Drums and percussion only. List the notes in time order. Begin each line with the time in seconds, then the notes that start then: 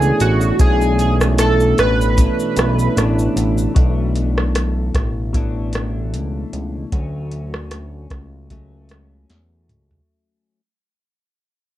0.02 shaker
0.20 closed hi-hat, shaker
0.41 shaker
0.59 kick, closed hi-hat, shaker
0.81 shaker
0.99 closed hi-hat, shaker
1.21 cross-stick, shaker
1.38 cross-stick, closed hi-hat, shaker
1.60 shaker
1.78 cross-stick, closed hi-hat, shaker
2.01 shaker
2.18 kick, closed hi-hat, shaker
2.40 shaker
2.56 cross-stick, closed hi-hat, shaker
2.79 shaker
2.97 cross-stick, closed hi-hat, shaker
3.19 shaker
3.37 closed hi-hat, shaker
3.58 shaker
3.76 kick, closed hi-hat
4.16 closed hi-hat
4.38 cross-stick
4.55 cross-stick, closed hi-hat
4.94 kick, cross-stick, closed hi-hat
5.34 kick, closed hi-hat
5.73 cross-stick, closed hi-hat
6.14 closed hi-hat
6.53 closed hi-hat
6.92 kick, closed hi-hat
7.31 closed hi-hat
7.54 cross-stick
7.71 cross-stick, closed hi-hat
8.10 kick, cross-stick, closed hi-hat
8.50 kick, closed hi-hat
8.89 cross-stick, closed hi-hat
9.30 snare, closed hi-hat
9.69 closed hi-hat, mid tom
9.91 floor tom